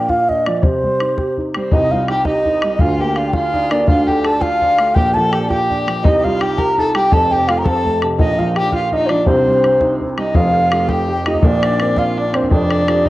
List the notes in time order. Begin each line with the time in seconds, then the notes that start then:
Already playing: A#2 G5
0.09 F4 F5, bodhran
0.29 D4 D#5, bodhran
0.46 F3 D5, bodhran
0.57 D5
0.63 C3 C5, bodhran
0.83 G3, bodhran
1.00 D#4, bodhran
1.18 G4, bodhran
1.37 D#4, bodhran
1.54 G3 C4 C5, bodhran
1.72 C2 C3 D#4 D#5, bodhran
1.91 G3 F4 F5, bodhran
2.08 D#4 G4 G5, bodhran
2.25 D#4 G4 D#5, bodhran
2.45 D#4, bodhran
2.62 G3, bodhran
2.76 D#5, bodhran
2.80 D2 D3 F4 F5
2.98 A#3 G4 G5, bodhran
3.16 D4 F4 F5, bodhran
3.28 G5
3.33 F4 F5, bodhran
3.53 D4 D#4, bodhran
3.71 A#3 D4 D5, bodhran
3.87 D2 D3 F4 F5, bodhran
4.06 A3 G4 G5, bodhran
4.24 D4 A4 A5, bodhran
4.40 F4 F5, bodhran
4.61 D4, bodhran
4.79 A3, bodhran
4.95 A#1 A#2 G4 G5, bodhran
5.14 F3 A4 A5, bodhran
5.32 D4 G4 G5, bodhran
5.42 A5
5.49 F4 G4 G5, bodhran
5.70 D4, bodhran
5.87 F3, bodhran
6.03 C2 C3 D#4 D#5, bodhran
6.19 G4
6.23 G3 F4 F5, bodhran
6.37 D#4 G4 F5 G5, bodhran
6.57 G4 A#4 A#5, bodhran
6.78 D#4 A4 A5, bodhran
6.95 G3 G4 G5, bodhran
7.11 F1 F2 A4 A5, bodhran
7.31 C3 G4 G5, bodhran
7.48 A3 F4 F5, bodhran
7.58 A#4 A#5
7.64 C4 A4 A5, bodhran
7.85 A3, bodhran
8.02 C3, bodhran
8.19 A#1 A#2 D#4 D#5, bodhran
8.39 F3 F4 F5, bodhran
8.55 D4 G4 G5, bodhran
8.72 F4 F5, bodhran
8.92 D4 D#4 D#5, bodhran
9.06 F3 D4 C5 D5, bodhran
9.11 D4
9.26 C2 C3 C4 C5, bodhran
9.47 G3, bodhran
9.64 C4, bodhran
9.81 D#4, bodhran
10.01 C4, bodhran
10.18 G3 D#4 D#5, bodhran
10.35 F1 F2 F4 F5, bodhran
10.72 A3 F4 G4, bodhran
10.88 G4 G5, bodhran
11.09 G4 G5
11.26 A3 D#4 F4 G4 D#5, bodhran
11.34 bodhran
11.43 A#1 A#2 D4 D5, bodhran
11.63 bodhran
11.80 C4 D4 A#4, bodhran
11.97 F4 F5, bodhran
12.17 D4 D5
12.33 C4 D4 A#4 C5, bodhran
12.43 bodhran
12.51 F1 F2 D4 D5, bodhran
12.71 bodhran
12.88 C4 F4 G4, bodhran
13.03 D#4, bodhran